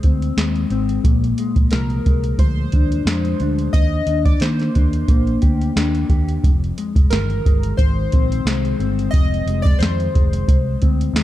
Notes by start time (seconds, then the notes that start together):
Already playing: F2 G#3
0.03 D2 C4, kick, closed hi-hat
0.22 closed hi-hat
0.37 D#2 G#3, snare, closed hi-hat
0.56 closed hi-hat
0.70 G#1 C4, closed hi-hat
0.89 closed hi-hat
1.04 A#1 A#2, kick, closed hi-hat
1.24 closed hi-hat
1.38 G#3, closed hi-hat
1.56 A#1, kick, closed hi-hat
1.71 C2 F3 A#4, snare, closed hi-hat
1.90 closed hi-hat
2.06 C2 G#3, kick, closed hi-hat
2.24 closed hi-hat
2.38 D2 F3 C5, kick, closed hi-hat
2.72 D#2 D4, kick, closed hi-hat
2.92 closed hi-hat
3.05 F2 G#3, snare, closed hi-hat
3.25 closed hi-hat
3.40 D2 D4, closed hi-hat
3.59 closed hi-hat
3.73 D#2 D#5, kick, closed hi-hat
4.06 D#2 D4, closed hi-hat
4.25 D5, kick, closed hi-hat
4.40 D#3 A#3 C5, snare, closed hi-hat
4.59 snare, closed hi-hat
4.75 D#2 D4, kick, closed hi-hat
4.93 closed hi-hat
5.08 A#1 A#3, kick, closed hi-hat
5.27 closed hi-hat
5.42 D2 G4, kick, closed hi-hat
5.61 closed hi-hat
5.76 D#2 D4, snare, closed hi-hat
5.95 closed hi-hat
6.09 D#2 G4, kick, closed hi-hat
6.29 closed hi-hat
6.44 F1 F2, kick, closed hi-hat
6.64 closed hi-hat
6.78 G#3, closed hi-hat
6.95 F1, kick, closed hi-hat
7.10 G1 D#3 A#4, snare, closed hi-hat
7.30 closed hi-hat
7.45 G1 G#3, kick, closed hi-hat
7.63 closed hi-hat
7.77 G#1 D#3 C5, kick, closed hi-hat
8.12 A#1 C4, kick, closed hi-hat
8.32 closed hi-hat
8.45 C2 G#3, snare, closed hi-hat
8.65 closed hi-hat
8.79 G1 C4, closed hi-hat
8.99 closed hi-hat
9.11 F1 D#5, kick, closed hi-hat
9.34 closed hi-hat
9.46 F1 G#3, closed hi-hat
9.62 D5, kick
9.66 closed hi-hat
9.79 F2 D#3 C5, snare, closed hi-hat
10.00 closed hi-hat
10.14 F1 G#3, kick, closed hi-hat
10.33 closed hi-hat
10.48 C2, kick, closed hi-hat
10.82 D2 C4, kick, closed hi-hat
11.01 closed hi-hat
11.13 D#2 G#3, snare, closed hi-hat